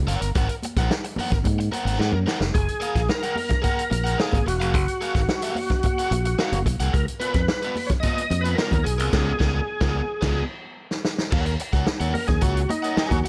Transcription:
0.07 F#1 A#4 C#5 F#5, closed hi-hat, muted conga
0.21 G1, muted overdriven electric guitar stroke, closed hi-hat
0.35 G#1 A#4 C5 F#5, kick, closed hi-hat, muted conga
0.49 muted overdriven electric guitar stroke, closed hi-hat
0.63 muted overdriven electric guitar stroke, closed hi-hat, muted conga, high conga
0.77 A#1 A#4 C5 F#5, kick, snare, closed hi-hat
0.90 snare, muted conga
1.04 muted overdriven electric guitar stroke, closed hi-hat
1.16 A#4 C5, muted fingered electric bass stroke, open hi-hat, muted conga, high conga, low conga
1.21 F#5
1.30 G#1, muted overdriven electric guitar stroke, kick, snare, closed hi-hat, low conga
1.44 G#2, muted overdriven electric guitar stroke, kick, closed hi-hat, muted conga, high conga
1.59 muted overdriven electric guitar stroke, closed hi-hat
1.71 A#4 C5 F#5, closed hi-hat, high conga
1.85 G#1 A#4 C5 F#5, closed hi-hat
1.99 G#2 A#4 C5 F#5, snare, muted conga
2.12 F#2, muted overdriven electric guitar stroke, high conga, low conga
2.26 A#4 C5 F#5, snare, muted conga
2.40 F1, muted overdriven electric guitar stroke, snare
2.54 F#1 G#4, kick, closed hi-hat, muted conga
2.68 closed hi-hat
2.80 G#4 A#4 F5, closed hi-hat, muted conga
2.96 A#1, kick, snare, closed hi-hat
3.08 A#4, muted overdriven electric guitar stroke, snare, muted conga
3.23 G#4 A#4 F#5, closed hi-hat
3.36 muted overdriven electric guitar stroke, open hi-hat, muted conga, high conga
3.49 muted overdriven electric guitar stroke, kick, snare, closed hi-hat, low conga
3.62 G#4 A#4 F#5, kick, closed hi-hat, high conga
3.79 closed hi-hat
3.90 A#1, muted overdriven electric guitar stroke, closed hi-hat, muted conga, high conga
4.04 G#4 A#4 F#5, closed hi-hat
4.18 G#4 A#4 F5, snare
4.32 G#1, kick, closed hi-hat, high conga, low conga
4.46 E1 F#4, muted overdriven electric guitar stroke, closed hi-hat, muted conga
4.60 F1 G#4 A#4 F5, closed hi-hat
4.74 F#1, kick, closed hi-hat, muted conga
4.88 closed hi-hat
5.01 G#4 A#4 F5, closed hi-hat, muted conga
5.15 G#1, kick, snare, closed hi-hat
5.29 muted overdriven electric guitar stroke, snare
5.42 G#4 A#4 F5, closed hi-hat
5.55 muted overdriven electric guitar stroke, open hi-hat, high conga
5.70 muted overdriven electric guitar stroke, kick, snare, closed hi-hat, low conga
5.83 muted overdriven electric guitar stroke, kick, closed hi-hat, muted conga, high conga
5.98 G#4 A#4 F#5, closed hi-hat
6.11 A#1, muted overdriven electric guitar stroke, closed hi-hat, high conga
6.25 muted overdriven electric guitar stroke, closed hi-hat
6.38 G#4 A#4 F5, snare, muted conga
6.52 F#1, closed hi-hat, high conga, low conga
6.66 B1, muted overdriven electric guitar stroke, kick, closed hi-hat
6.80 C2 G#4 A#4 F#5, closed hi-hat
6.93 C#2 A#4, kick, closed hi-hat, muted conga
7.08 closed hi-hat
7.20 B3 F4 A#4 B4, closed hi-hat
7.34 F2, kick, snare, closed hi-hat
7.48 muted overdriven electric guitar stroke, snare
7.62 B3 F4 B4, closed hi-hat
7.76 muted overdriven electric guitar stroke, open hi-hat, muted conga, high conga
7.86 C#5, muted overdriven electric guitar stroke, kick, snare, closed hi-hat, low conga
8.00 B3 D#5, kick, closed hi-hat, muted conga, high conga
8.05 F4 B4
8.18 closed hi-hat
8.30 F2, muted overdriven electric guitar stroke, closed hi-hat, high conga
8.41 B4
8.45 B3 F4, closed hi-hat
8.55 B3 F4 A#4, snare, muted conga
8.59 A#4
8.71 D#2, kick, closed hi-hat, high conga, low conga
8.83 B1 G#4, muted overdriven electric guitar stroke, closed hi-hat, muted conga
8.98 C2 B3 F4 A#4, closed hi-hat
9.12 C#2 B3 F4 A#4, kick, snare, crash
9.39 C#2 B3 F4 A#4, kick, snare
9.81 C#2 B3 F4 A#4, kick, snare
10.21 C#2 B3 F4 B4, kick, snare, crash
10.91 snare
11.05 snare
11.18 snare
11.31 D#2 A#4 C#5 F#5, kick, crash, muted conga
11.46 muted overdriven electric guitar stroke, closed hi-hat
11.59 muted overdriven electric guitar stroke, closed hi-hat
11.73 C#2 A#4 C#5 F#5, kick, snare, closed hi-hat
11.87 muted overdriven electric guitar stroke, muted fingered electric bass stroke, snare, muted conga
12.00 D#2 A#4 C#5 F#5, closed hi-hat
12.14 A#4, muted overdriven electric guitar stroke, open hi-hat, muted conga, high conga, low conga
12.27 D#2 G#4, muted overdriven electric guitar stroke, kick, snare, closed hi-hat, low conga
12.41 C#2 F#4 A#4 C#5 F#5, kick, closed hi-hat, high conga
12.57 closed hi-hat
12.69 D#4, muted overdriven electric guitar stroke, closed hi-hat, muted conga, high conga
12.82 A#4 C#5 F#5, closed hi-hat
12.96 A#4 C#5 G#5, muted fingered electric bass stroke, snare, muted conga
13.09 D#2 F#4, kick, closed hi-hat, high conga, low conga
13.24 muted overdriven electric guitar stroke, closed hi-hat, muted conga

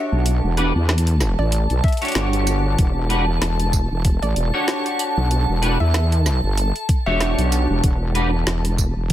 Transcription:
Already playing: D4 F#4 G4 C#5 E5 A5
0.12 B1
0.26 closed hi-hat
0.44 E1
0.57 D4 F#4 G4 B4, cross-stick, closed hi-hat
0.75 E2
0.89 snare
0.98 closed hi-hat
1.07 closed hi-hat
1.20 snare, tambourine
1.39 A1 D5
1.52 closed hi-hat
1.70 B1, closed hi-hat
1.84 E5, kick, closed hi-hat
1.88 closed hi-hat
1.92 closed hi-hat
1.97 closed hi-hat
2.02 D4 F#4 G4 C#5, closed hi-hat
2.05 closed hi-hat
2.08 closed hi-hat
2.12 snare, closed hi-hat
2.15 G1, closed hi-hat
2.33 closed hi-hat
2.47 cross-stick, closed hi-hat, tambourine
2.79 E1, kick, closed hi-hat
3.09 D4 F#4 G4 B4, closed hi-hat
3.41 E1, snare, closed hi-hat
3.60 closed hi-hat
3.73 kick, tambourine
3.91 E1
4.05 kick, closed hi-hat
4.22 A1 D5, closed hi-hat
4.36 E1, closed hi-hat
4.54 D4 F#4 G4 C#5, cross-stick
4.68 snare, closed hi-hat
4.86 closed hi-hat
4.99 closed hi-hat, tambourine
5.17 B1
5.31 closed hi-hat
5.49 E1
5.62 D4 F#4 G4 B4, cross-stick, closed hi-hat
5.80 E2 E5
5.94 E5, snare, closed hi-hat
6.12 closed hi-hat
6.26 snare, tambourine
6.44 G1
6.57 closed hi-hat
6.76 closed hi-hat
6.89 kick, closed hi-hat
7.06 E1 D4 F#4 G4 C#5 E5
7.20 E5, snare, closed hi-hat
7.38 B1, closed hi-hat
7.52 cross-stick, closed hi-hat, tambourine
7.70 E1
7.84 E1, kick, closed hi-hat
8.15 D4 F#4 G4 B4, closed hi-hat
8.47 E1, snare, closed hi-hat
8.65 closed hi-hat
8.78 kick, tambourine
8.96 E1

